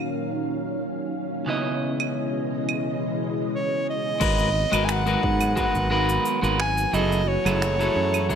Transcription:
Already playing: A#2 D#3 F#3 C#4 F#4 F5
1.46 B2 C#3 E3 G#3 B3 E4 D#5
2.00 claves
2.69 claves
3.55 C#5
3.90 D#5
4.20 G#1 D#3 F#3 G#3 B3 F#4 A#4 B4, kick, crash, shaker
4.39 shaker
4.72 G#1 G#3 F#4 A#4 B4, claves, shaker
4.85 G#5
4.89 F#5, finger snap, shaker
5.06 G#3 F#4 A#4 B4, shaker
5.23 G#2, kick
5.41 claves, shaker
5.56 G#3 F#4 A#4 B4 F#5, kick, shaker
5.75 G#1, shaker
5.90 G#3 F#4 A#4 B4
6.09 shaker
6.25 shaker
6.42 G#1 G#3 F#4 A#4 B4, shaker
6.60 G#5, finger snap
6.78 shaker
6.93 F#1 E3 F#3 A3 C#4 E4 G#4 A4 D#5, shaker
7.12 shaker
7.28 C#5
7.45 F#1 F#3 E4 G#4 A4, claves, shaker
7.62 finger snap, shaker
7.79 F#3 E4 G#4 A4, shaker
7.96 F#2
8.14 claves, shaker
8.29 F#3 E4 G#4 A4, kick, shaker

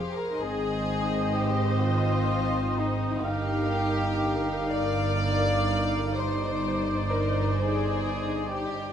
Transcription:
Already playing: G4 G#4 C5 F5
0.14 A#4
0.38 G#1 G#2 C4 D#4 G#4 C5 D#5
1.34 G4
1.81 F4
2.77 D#4
3.24 G1 G2 D#4 G4 A#4 F5
4.72 D5
6.14 D#4 C5 D5
7.09 A#4
7.57 G#4
8.51 G4

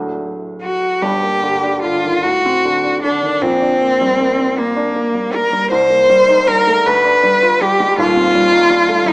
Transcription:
Already playing: D1 D2 F#3 A3 D4
0.62 F#4
1.01 G1 G2 G4
1.23 A#3
1.43 D3
1.63 D4
1.83 D3 F4
2.04 D#3
2.23 A2 F#4
2.45 C4
2.65 D3
2.84 D4
3.03 D3 D4
3.23 D#3
3.41 A#1 A#2 C4
3.62 D4
3.81 A#3
4.01 G3
4.20 A#3
4.39 C4
4.58 A#3
4.76 D4
4.96 A#3
5.15 G3
5.34 A#3 A#4
5.53 G3
5.71 C2 C5
5.90 A#3
6.09 G3
6.28 D#4
6.47 G3 A#4
6.67 A3
6.86 D2 B4
7.04 D4
7.23 G3
7.42 F4
7.61 G3 G4
7.80 G#3
7.97 D#1 D#2 F4
8.16 C4
8.35 G3
8.52 D#4
8.70 G3
8.88 A3
9.06 G3 D#4

